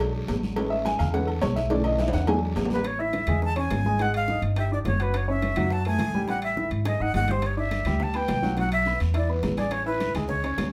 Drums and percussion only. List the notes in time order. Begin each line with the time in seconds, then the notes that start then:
0.00 cowbell, low agogo, long guiro
0.15 high conga
0.28 cowbell, high conga, low timbale, low agogo, short guiro
0.43 high conga, short guiro
0.56 cowbell, low agogo, long guiro
0.73 high conga
0.85 cowbell, high conga, low timbale, low agogo, short guiro
0.99 cowbell, high conga, low conga, low agogo, short guiro
1.14 cowbell, high conga, long guiro
1.28 high conga, low agogo
1.41 cowbell, high conga, low timbale, low agogo, short guiro
1.56 cowbell, high conga, short guiro
1.70 cowbell, low agogo, long guiro
1.84 high conga, low agogo
1.98 cowbell, high conga, high timbale, short guiro
2.08 high timbale
2.13 cowbell, high conga, short guiro
2.18 high timbale
2.27 cowbell, high conga, low timbale, low agogo, long guiro
2.42 high conga
2.56 cowbell, high conga, low timbale, low agogo, short guiro
2.65 low timbale
2.70 high conga, short guiro
2.75 low timbale
2.84 high bongo, high conga, high timbale
3.00 high conga
3.13 high bongo, high conga, high timbale
3.27 high conga, low conga, high timbale
3.42 high bongo
3.56 high conga, high timbale
3.70 high bongo, low bongo, high conga, high timbale, low timbale
3.85 high conga
3.99 high bongo, high conga, high timbale
4.14 high conga, high timbale
4.28 high bongo, high conga
4.42 high bongo, high conga, high timbale
4.56 high bongo, high conga, high timbale
4.71 high bongo, high conga
4.85 high bongo, low bongo, high conga, high timbale, low timbale
4.99 high bongo, high timbale
5.14 high bongo, high timbale
5.29 high conga
5.42 high bongo, high conga, high timbale
5.56 high conga, low conga, high timbale
5.71 high bongo, high conga
5.85 high conga, high timbale
5.99 high bongo, low bongo, high conga, high timbale
6.14 high conga
6.28 high bongo, high conga, high timbale
6.42 high conga, high timbale
6.57 high bongo, high conga
6.71 high bongo, high conga, high timbale
6.85 high bongo, high conga, high timbale
7.01 high conga
7.14 low bongo, high conga, high timbale, low timbale
7.28 low bongo, high conga, high timbale
7.42 high bongo, high conga, high timbale, long guiro
7.57 high conga
7.71 high bongo, high conga, high timbale, short guiro
7.85 high conga, low conga, high timbale, short guiro
8.00 high bongo, high conga, low conga, long guiro
8.14 high conga, high timbale
8.28 high bongo, low bongo, high conga, high timbale, low timbale, short guiro
8.43 high conga, short guiro
8.57 high bongo, high conga, high timbale, long guiro
8.72 high conga, high timbale
8.86 high bongo, high conga, short guiro
9.00 high bongo, high conga, high timbale, short guiro
9.14 high bongo, high conga, high timbale, long guiro
9.29 high bongo, high conga
9.43 high bongo, low bongo, high conga, high timbale, low timbale, short guiro
9.57 high bongo, high conga, high timbale, short guiro
9.71 high bongo, high conga, high timbale, long guiro
9.86 high conga
10.00 high bongo, high conga, high timbale, short guiro
10.15 high conga, low conga, high timbale, short guiro
10.29 high bongo, high conga, low conga, long guiro
10.44 high conga, high timbale
10.58 high bongo, low bongo, high conga, high timbale, low timbale, short guiro